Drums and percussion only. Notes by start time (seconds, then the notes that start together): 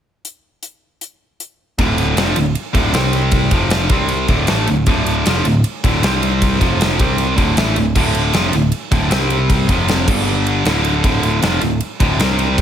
0.25 closed hi-hat
0.63 closed hi-hat
1.01 closed hi-hat
1.40 closed hi-hat
1.79 kick, ride
1.98 ride
2.17 snare, ride
2.36 ride
2.55 ride
2.75 kick, ride
2.94 snare, ride
3.13 ride
3.31 kick, ride
3.51 kick, ride
3.70 snare, ride
3.89 kick, ride
4.08 ride
4.28 kick, ride
4.47 snare, ride
4.67 ride
4.86 kick, ride
5.06 ride
5.26 snare, ride
5.45 ride
5.64 ride
5.84 kick, ride
6.03 snare, ride
6.23 ride
6.42 kick, ride
6.61 kick, ride
6.81 snare, ride
7.00 kick, ride
7.18 ride
7.38 kick, ride
7.57 snare, ride
7.76 ride
7.96 kick, crash
8.15 ride
8.33 snare, ride
8.53 ride
8.72 ride
8.92 kick, snare, ride
9.11 snare, ride
9.30 ride
9.50 kick, ride
9.69 kick, ride
9.88 snare, ride
10.08 kick, crash
10.47 ride
10.65 snare, ride
10.85 ride
11.04 kick, ride
11.23 ride
11.42 snare, ride
11.61 ride
11.80 ride
12.00 kick, ride
12.20 snare, ride
12.39 ride
12.58 kick, ride